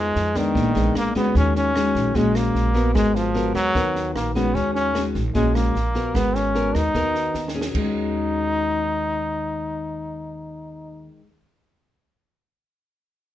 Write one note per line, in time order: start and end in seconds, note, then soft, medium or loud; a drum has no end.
0.00 0.12 F2 medium
0.00 0.35 F3 medium
0.00 0.39 G#3 medium
0.00 0.32 B3 medium
0.00 0.32 D#4 medium
0.00 0.33 G#4 medium
0.15 0.53 F2 medium
0.15 snare soft
0.35 0.96 D#3 medium
0.35 0.72 G#3 soft
0.35 0.72 B3 soft
0.35 0.72 D4 medium
0.35 kick soft
0.35 cross-stick soft
0.35 snare soft
0.55 0.74 A#1 medium
0.55 1.33 A#2 medium
0.55 kick medium
0.55 snare soft
0.75 0.93 A#1 medium
0.75 1.12 G#3 medium
0.75 1.12 B3 medium
0.75 1.12 D4 medium
0.75 snare soft
0.95 1.15 A#3 medium
0.95 cross-stick medium
0.95 snare soft
1.15 1.33 D2 medium
1.15 1.73 G#3 medium
1.15 1.35 B3 medium
1.15 1.74 C#4 medium
1.15 1.74 F#4 medium
1.15 kick soft
1.15 snare soft
1.35 1.91 D#2 medium
1.35 2.13 D#3 soft
1.35 1.55 C#4 medium
1.35 kick medium
1.35 snare soft
1.55 2.17 C#4 medium
1.55 snare soft
1.75 2.12 G#3 medium
1.75 2.12 C#4 medium
1.75 2.13 F#4 medium
1.75 cross-stick medium
1.75 snare soft
1.95 2.14 A#1 medium
1.95 kick soft
1.95 snare soft
2.14 2.52 A#1 medium
2.14 2.93 A#2 soft
2.14 2.72 G#3 medium
2.14 2.38 G#3 medium
2.14 2.72 C#4 medium
2.14 2.72 F#4 medium
2.14 kick medium
2.14 snare soft
2.35 2.94 A#3 medium
2.35 cross-stick medium
2.35 snare soft
2.55 2.92 A#1 medium
2.55 snare soft
2.74 3.31 B3 medium
2.74 3.32 F#4 medium
2.74 3.32 A#4 medium
2.74 kick soft
2.74 snare soft
2.94 3.51 G#1 medium
2.94 3.73 G#3 soft
2.94 3.17 G#3 medium
2.94 kick soft
2.94 cross-stick medium
2.94 snare soft
3.15 3.54 F3 medium
3.15 snare soft
3.34 3.72 B3 medium
3.34 3.72 F#4 soft
3.34 3.72 A#4 medium
3.34 snare soft
3.55 3.73 D#2 medium
3.55 4.11 F#3 medium
3.55 kick soft
3.55 cross-stick soft
3.55 snare soft
3.75 4.12 D#2 medium
3.75 4.53 D#3 soft
3.75 4.32 B3 soft
3.75 4.32 F#4 soft
3.75 4.32 A#4 medium
3.75 kick medium
3.75 snare soft
3.95 snare soft
4.15 4.52 A#1 medium
4.15 4.34 A#3 medium
4.15 cross-stick medium
4.15 snare soft
4.35 4.92 G#3 medium
4.35 4.56 B3 medium
4.35 4.92 C#4 medium
4.35 4.92 F#4 medium
4.35 kick soft
4.35 snare soft
4.55 5.11 D#2 medium
4.55 5.33 D#3 medium
4.55 4.74 C#4 medium
4.55 kick medium
4.55 snare soft
4.74 5.05 C#4 medium
4.74 snare soft
4.95 5.21 G#3 soft
4.95 5.21 C#4 soft
4.95 5.21 F#4 soft
4.95 cross-stick medium
4.95 snare soft
5.15 5.34 A#1 loud
5.15 kick soft
5.15 snare soft
5.34 5.72 A#1 medium
5.34 6.13 A#2 medium
5.34 5.75 G#3 soft
5.34 5.56 G#3 medium
5.34 5.75 C#4 medium
5.34 5.75 F#4 medium
5.34 kick medium
5.34 snare soft
5.55 6.17 A#3 medium
5.55 cross-stick medium
5.55 snare soft
5.75 6.12 A#1 medium
5.75 snare soft
5.95 6.52 B3 medium
5.95 6.52 F#4 soft
5.95 6.52 A#4 soft
5.95 kick soft
5.95 snare soft
6.14 6.71 G#1 medium
6.14 6.93 G#3 soft
6.14 6.37 B3 medium
6.14 kick medium
6.14 cross-stick medium
6.14 snare soft
6.35 6.77 C#4 medium
6.35 snare soft
6.55 6.81 B3 soft
6.55 6.81 F#4 medium
6.55 6.81 A#4 medium
6.55 snare soft
6.75 6.94 D#2 medium
6.75 7.55 D#4 loud
6.75 kick soft
6.75 cross-stick medium
6.75 snare soft
6.94 7.32 D#2 medium
6.94 7.70 D#3 medium
6.94 7.35 B3 soft
6.94 7.35 F#4 soft
6.94 7.35 A#4 medium
6.94 kick medium
6.94 snare soft
7.15 snare soft
7.34 7.72 D#2 medium
7.34 snare soft
7.48 snare soft
7.54 7.80 C#4 soft
7.54 7.85 F#4 soft
7.54 8.12 G#4 medium
7.61 snare medium
7.71 11.21 D#3 soft
7.75 11.08 D#2 medium
7.75 11.27 G#3 medium
7.75 11.10 D#4 medium
7.75 kick medium
7.75 crash medium
7.81 11.31 C#4 medium
7.86 11.36 F#4 medium